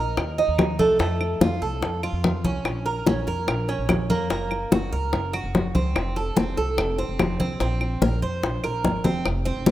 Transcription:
0.00 0.16 A#1 medium
0.00 0.37 A#4 medium
0.17 0.47 D#2 medium
0.17 high bongo medium
0.17 high conga soft
0.17 claves medium
0.38 0.78 D#4 medium
0.38 high bongo soft
0.38 high conga soft
0.48 0.78 D#2 medium
0.58 high bongo medium
0.58 low bongo medium
0.58 high conga medium
0.58 claves medium
0.79 0.99 C2 medium
0.79 0.98 A3 medium
0.79 high conga medium
0.99 1.39 F2 medium
0.99 1.40 A3 medium
0.99 high bongo medium
0.99 high conga soft
1.21 high bongo soft
1.21 high conga soft
1.21 claves medium
1.40 1.60 F2 medium
1.40 1.61 F4 medium
1.40 high bongo medium
1.40 high conga medium
1.61 1.81 C2 medium
1.61 2.02 A4 medium
1.61 high conga soft
1.81 2.11 F2 medium
1.81 high bongo medium
1.81 high conga soft
2.03 2.43 F4 medium
2.03 high bongo soft
2.03 high conga soft
2.03 claves medium
2.13 2.43 F2 medium
2.24 high bongo medium
2.24 low bongo medium
2.24 high conga medium
2.44 2.64 C2 medium
2.44 2.85 C#4 medium
2.44 high bongo soft
2.44 high conga medium
2.65 3.04 A#1 medium
2.65 high bongo medium
2.65 high conga soft
2.65 claves medium
2.86 3.06 A#4 medium
2.86 high bongo soft
2.86 high conga soft
3.06 3.26 A#1 medium
3.06 3.27 C#4 medium
3.06 high bongo medium
3.06 high conga medium
3.27 3.47 F2 medium
3.27 3.67 A#4 medium
3.27 high bongo soft
3.27 high conga soft
3.47 3.77 A#1 medium
3.47 high bongo medium
3.47 high conga soft
3.47 claves medium
3.68 4.09 C#4 medium
3.68 high bongo soft
3.68 high conga soft
3.79 4.08 A#1 medium
3.89 high bongo medium
3.89 low bongo medium
3.89 high conga medium
3.89 claves medium
4.09 4.29 F2 medium
4.09 4.29 A#3 medium
4.09 high conga medium
4.30 4.69 F#1 medium
4.30 4.70 A#3 medium
4.30 high bongo medium
4.30 high conga soft
4.51 high bongo soft
4.51 high conga soft
4.51 claves medium
4.71 4.91 F#1 medium
4.71 4.92 F#4 medium
4.71 high bongo medium
4.71 high conga medium
4.92 5.12 C#2 medium
4.92 5.32 A#4 medium
4.92 high conga soft
5.13 5.42 F#1 medium
5.13 high bongo medium
5.13 high conga soft
5.33 5.73 F#4 medium
5.33 high bongo soft
5.33 high conga soft
5.33 claves medium
5.44 5.73 F#1 medium
5.55 high bongo medium
5.55 low bongo medium
5.55 high conga medium
5.75 5.94 C#2 medium
5.75 6.15 C4 medium
5.75 high bongo soft
5.75 high conga medium
5.96 6.35 F1 medium
5.96 high bongo medium
5.96 high conga soft
5.96 claves medium
6.16 6.36 A4 medium
6.16 high bongo soft
6.16 high conga soft
6.36 6.56 F1 medium
6.36 6.57 C4 medium
6.36 high bongo medium
6.36 high conga medium
6.57 6.77 C2 medium
6.57 6.97 A4 medium
6.57 high bongo soft
6.57 high conga soft
6.77 7.07 F1 medium
6.77 high bongo medium
6.77 high conga soft
6.77 claves medium
6.98 7.39 C4 medium
6.98 high bongo soft
6.98 high conga soft
7.09 7.38 F1 medium
7.19 high bongo medium
7.19 low bongo medium
7.19 high conga medium
7.19 claves medium
7.40 7.59 C2 medium
7.40 7.60 C4 medium
7.40 high conga medium
7.60 8.00 A#1 medium
7.60 8.01 C4 medium
7.60 high bongo medium
7.60 high conga soft
7.81 high bongo soft
7.81 high conga soft
7.81 claves medium
8.02 8.21 A#1 medium
8.02 8.22 A#4 medium
8.02 high bongo medium
8.02 high conga medium
8.22 8.42 F2 medium
8.22 8.62 C5 medium
8.22 high conga soft
8.43 8.63 A#1 medium
8.43 high bongo medium
8.43 high conga soft
8.63 8.82 A#1 medium
8.63 9.04 A#4 medium
8.63 high bongo soft
8.63 high conga soft
8.63 claves medium
8.84 9.03 G#1 medium
8.84 high bongo medium
8.84 high conga medium
9.04 9.23 F1 medium
9.04 9.25 C4 medium
9.04 low bongo medium
9.04 high conga medium
9.25 9.55 F1 medium
9.25 high bongo medium
9.25 high conga soft
9.25 claves medium
9.45 9.71 C4 medium
9.45 high bongo soft
9.45 high conga soft
9.56 9.71 F1 medium
9.66 high bongo medium
9.66 high conga medium

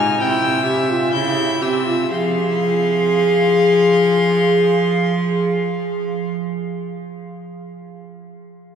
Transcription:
0.00 0.19 G#2 medium
0.00 0.20 D#4 medium
0.00 0.22 G#5 loud
0.00 0.20 F6 medium
0.19 1.13 C3 medium
0.19 0.65 E4 medium
0.19 0.66 G5 medium
0.19 1.12 E6 medium
0.65 0.91 G4 medium
0.65 2.09 E5 medium
0.89 1.15 F4 medium
1.13 1.62 C#3 medium
1.13 1.63 E4 medium
1.13 1.64 G6 medium
1.61 2.11 C3 medium
1.61 1.85 G4 medium
1.61 2.12 E6 medium
1.86 2.11 F4 medium
2.11 6.29 F3 medium
2.11 6.27 G#4 medium
2.11 6.28 F5 medium
2.11 6.28 C6 medium

